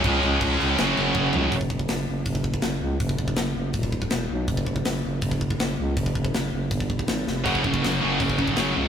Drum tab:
CC |x-x-x-x-x-x-----|----------------|----------------|----------------|
HH |----------------|o---o---o---o---|o---o---o---o---|o---o---o---o---|
SD |--------o-------|----o-------o---|----o-------o---|----o-------o---|
FT |--------------o-|----------------|----------------|----------------|
BD |o---o-------o---|oooo----oooo----|oooo----oooo----|oooo----oooo----|

CC |----------------|----------------|
HH |o---o---o---o---|o---o---o---o---|
SD |----o-------o-o-|----o-------o---|
FT |----------------|----------------|
BD |oooo----oooo----|oooo----oooo----|